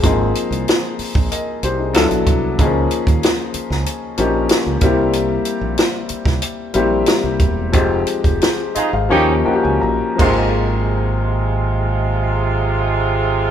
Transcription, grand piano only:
\new Staff \with { instrumentName = "Grand piano" } { \time 4/4 \key aes \major \tempo 4 = 93 << { r2 <bes' ees''>8 <g' c''>16 <ees' aes'>8 r8. | r1 | r1 | r4. ees''16 f''16 f''8 g''16 aes''16 bes''8 r8 |
r1 | } \\ { <f bes c' ees' aes'>4. r4. <fis b d' fes' a'>4 | <ees f bes des' ees' aes'>4. r4 <f bes des' ees' g'>4 <g bes c' e' g'>8~ | <g bes c' e' g'>4 r4. <g bes c' e' g'>4 r8 | <f aes c' ees' g'>4. r8 <f bes des' ees' g'>8 <f bes des' ees' ges' g'>4 <f bes c' ees' aes'>8~ |
<f bes c' ees' aes'>1 | } >> }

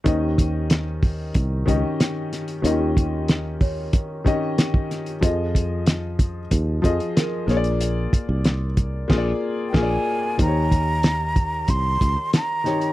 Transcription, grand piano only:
\new Staff \with { instrumentName = "Grand piano" } { \time 4/4 \key ees \mixolydian \tempo 4 = 93 <ees des' g' ees''>2 r8 <ees des' g' ees''>4. | <ees des' f' g' ees''>2 r8 <ees des' g' ees''>4. | <f f' aes' ees''>2 r8 <f f' aes' ees''>4 <bes f' aes' des'' d''>8~ | <bes f' aes' des'' d''>4. r8 <bes f' aes' d''>8 r8 <bes f' aes' d''>8 r8 |
<ees ees' g' c'' des''>2 r4. <ees ees' g' des''>8 | }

